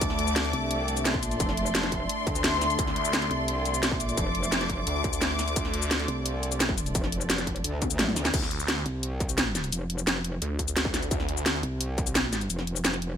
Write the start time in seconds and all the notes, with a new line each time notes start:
Already playing: A3 D4 A4 D5 E5 A5 D6
0.01 D2, kick, closed hi-hat, cabasa
0.10 snare
0.19 closed hi-hat
0.27 cabasa
0.36 snare, closed hi-hat, cabasa
0.45 closed hi-hat
0.53 C2, closed hi-hat
0.71 closed hi-hat
0.88 closed hi-hat, cabasa
0.97 closed hi-hat, cabasa
1.05 C6, snare, closed hi-hat, cabasa
1.13 B1, kick
1.23 closed hi-hat, cabasa
1.31 closed hi-hat, cabasa
1.40 F1, kick, closed hi-hat, cabasa
1.49 snare
1.57 closed hi-hat
1.66 cabasa
1.75 F1, snare, closed hi-hat, cabasa
1.83 snare, closed hi-hat
1.92 kick, closed hi-hat
2.09 closed hi-hat
2.27 D2, kick, closed hi-hat, cabasa
2.35 closed hi-hat, cabasa
2.44 snare, closed hi-hat, cabasa
2.61 snare, closed hi-hat, cabasa
2.70 closed hi-hat, cabasa
2.79 D2 C6, kick, closed hi-hat, cabasa
2.87 snare
2.96 closed hi-hat
3.05 cabasa
3.13 snare, closed hi-hat, cabasa
3.22 closed hi-hat
3.31 C2, closed hi-hat
3.48 closed hi-hat
3.65 closed hi-hat, cabasa
3.74 closed hi-hat, cabasa
3.83 D6, snare, closed hi-hat, cabasa
3.91 B1, kick
4.00 closed hi-hat, cabasa
4.09 closed hi-hat, cabasa
4.17 F1, kick, closed hi-hat, cabasa
4.35 closed hi-hat
4.44 cabasa
4.52 F1, snare, closed hi-hat, cabasa
4.61 snare, closed hi-hat
4.70 kick, closed hi-hat
4.87 D2, closed hi-hat
5.04 kick, closed hi-hat, cabasa
5.13 closed hi-hat, cabasa
5.22 snare, closed hi-hat, cabasa
5.39 snare, closed hi-hat, cabasa
5.48 closed hi-hat, cabasa
5.56 D2, kick, closed hi-hat, cabasa
5.65 snare
5.74 closed hi-hat
5.82 cabasa
5.91 snare, closed hi-hat, cabasa
6.00 closed hi-hat
6.08 C2, closed hi-hat
6.26 closed hi-hat
6.43 closed hi-hat, cabasa
6.52 closed hi-hat, cabasa
6.60 snare, closed hi-hat, cabasa
6.69 kick
6.78 closed hi-hat, cabasa
6.86 closed hi-hat, cabasa
6.95 F1, kick, closed hi-hat, cabasa
7.04 snare
7.12 closed hi-hat
7.21 cabasa
7.30 F1, snare, closed hi-hat, cabasa
7.38 snare, closed hi-hat, cabasa
7.47 kick, closed hi-hat
7.56 closed hi-hat
7.64 D2, closed hi-hat
7.82 kick, closed hi-hat, high tom, cabasa
7.90 closed hi-hat, cabasa
7.99 A1, snare, closed hi-hat, mid tom, cabasa
8.08 mid tom
8.16 D2, snare, closed hi-hat, cabasa
8.25 snare, closed hi-hat, cabasa
8.34 D2, kick, closed hi-hat, crash, cabasa
8.42 snare
8.51 closed hi-hat
8.60 cabasa
8.68 snare, closed hi-hat, cabasa
8.86 C2, closed hi-hat
9.03 closed hi-hat
9.20 kick, closed hi-hat, cabasa
9.29 closed hi-hat, cabasa
9.38 snare, closed hi-hat, cabasa
9.55 snare, closed hi-hat, cabasa
9.64 closed hi-hat, cabasa
9.72 F1, closed hi-hat, cabasa
9.90 closed hi-hat
9.98 cabasa
10.07 F1, snare, closed hi-hat, cabasa
10.25 closed hi-hat
10.42 D2, closed hi-hat
10.59 kick, closed hi-hat, cabasa
10.68 closed hi-hat, cabasa
10.77 snare, closed hi-hat, cabasa
10.85 kick
10.94 snare, closed hi-hat, cabasa
11.03 closed hi-hat, cabasa
11.11 D2, kick, closed hi-hat, cabasa
11.20 snare
11.29 closed hi-hat
11.37 cabasa
11.46 snare, closed hi-hat, cabasa
11.63 C2, closed hi-hat
11.81 closed hi-hat
11.98 kick, closed hi-hat, cabasa
12.07 closed hi-hat, cabasa
12.15 snare, closed hi-hat, cabasa
12.33 snare, closed hi-hat, cabasa
12.41 closed hi-hat, cabasa
12.50 F1, closed hi-hat, cabasa
12.59 snare
12.67 closed hi-hat
12.76 cabasa
12.85 F1, snare, closed hi-hat, cabasa
12.93 snare, cabasa
13.02 closed hi-hat